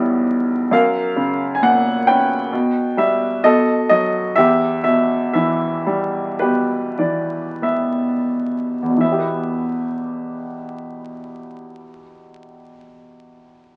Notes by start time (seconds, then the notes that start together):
Already playing: B1 E2 G3 B3 E4 G4 E5
0.71 F#2 A#4 F5
1.16 C#3
1.55 G#5
1.62 A#2 F#5
2.07 C#4 B4 G5
2.53 B2
2.97 G3 E5
3.43 B2 A4 D#5
3.89 F#3 D#5
4.36 E2 G4 E5
4.84 B2 E5
5.33 E3 E5
5.86 G3
6.39 B2 G4 B4
6.99 E3 D5
7.62 B3 E5
8.82 E2
8.89 B2
8.97 E3 E5
9.04 B3
9.12 G4
9.19 B4